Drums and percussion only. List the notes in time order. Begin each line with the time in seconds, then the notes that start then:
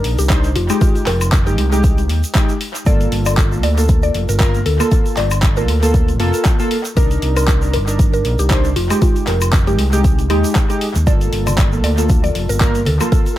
0.04 open hi-hat
0.19 closed hi-hat, shaker
0.29 kick, clap, closed hi-hat, shaker
0.44 closed hi-hat, shaker
0.56 open hi-hat
0.70 closed hi-hat, high woodblock, shaker
0.81 kick, closed hi-hat, shaker
0.95 closed hi-hat, shaker
1.06 clap, open hi-hat
1.21 closed hi-hat, high woodblock, shaker
1.32 kick, clap, closed hi-hat, shaker
1.47 shaker
1.58 open hi-hat
1.72 closed hi-hat, shaker
1.84 kick, closed hi-hat, shaker
1.98 closed hi-hat, shaker
2.09 open hi-hat
2.24 closed hi-hat, shaker
2.35 kick, clap, closed hi-hat, shaker
2.49 closed hi-hat, shaker
2.61 open hi-hat
2.75 closed hi-hat, shaker
2.86 kick, closed hi-hat, shaker
3.01 closed hi-hat, shaker
3.12 open hi-hat
3.26 closed hi-hat, high woodblock, shaker
3.37 kick, clap, closed hi-hat, shaker
3.52 shaker
3.63 open hi-hat
3.78 closed hi-hat, shaker
3.88 kick, closed hi-hat, shaker
4.03 closed hi-hat, shaker
4.14 open hi-hat
4.29 closed hi-hat, shaker
4.40 kick, clap, closed hi-hat, shaker
4.54 closed hi-hat, shaker
4.66 open hi-hat
4.80 closed hi-hat, high woodblock, shaker
4.91 kick, closed hi-hat, shaker
5.06 closed hi-hat, shaker
5.17 clap, open hi-hat
5.31 closed hi-hat, high woodblock, shaker
5.42 kick, clap, closed hi-hat, shaker
5.57 shaker
5.68 open hi-hat
5.83 closed hi-hat, shaker
5.94 kick, closed hi-hat, shaker
6.08 closed hi-hat, shaker
6.20 open hi-hat
6.34 closed hi-hat, shaker
6.45 kick, clap, closed hi-hat, shaker
6.60 closed hi-hat, shaker
6.71 open hi-hat
6.85 closed hi-hat, shaker
6.97 kick, closed hi-hat, shaker
7.11 closed hi-hat, shaker
7.22 open hi-hat
7.37 closed hi-hat, high woodblock, shaker
7.47 kick, clap, closed hi-hat, shaker
7.62 shaker
7.73 open hi-hat
7.88 closed hi-hat, shaker
7.99 kick, closed hi-hat, shaker
8.13 closed hi-hat, shaker
8.25 open hi-hat
8.39 closed hi-hat, shaker
8.50 kick, clap, closed hi-hat, shaker
8.64 closed hi-hat, shaker
8.76 open hi-hat
8.90 closed hi-hat, high woodblock, shaker
9.02 kick, closed hi-hat, shaker
9.16 closed hi-hat, shaker
9.27 clap, open hi-hat
9.41 closed hi-hat, high woodblock, shaker
9.53 kick, clap, closed hi-hat, shaker
9.67 closed hi-hat, shaker
9.79 open hi-hat
9.93 closed hi-hat, shaker
10.04 kick, closed hi-hat, shaker
10.19 closed hi-hat, shaker
10.30 open hi-hat, high woodblock
10.44 closed hi-hat, shaker
10.55 kick, clap, closed hi-hat, shaker
10.70 closed hi-hat, shaker
10.81 open hi-hat
10.95 closed hi-hat, shaker
11.07 kick, closed hi-hat, shaker
11.21 closed hi-hat, shaker
11.33 open hi-hat
11.46 closed hi-hat, low conga, high woodblock, shaker
11.58 kick, clap, closed hi-hat, shaker
11.72 shaker
11.84 open hi-hat
11.98 closed hi-hat, shaker
12.09 kick, closed hi-hat, shaker
12.24 closed hi-hat, high conga, shaker
12.35 open hi-hat
12.49 closed hi-hat, shaker
12.60 kick, clap, closed hi-hat, shaker
12.75 closed hi-hat, shaker
12.85 open hi-hat, low conga
13.01 closed hi-hat, high conga, high woodblock, shaker
13.12 kick, closed hi-hat, shaker
13.26 closed hi-hat, shaker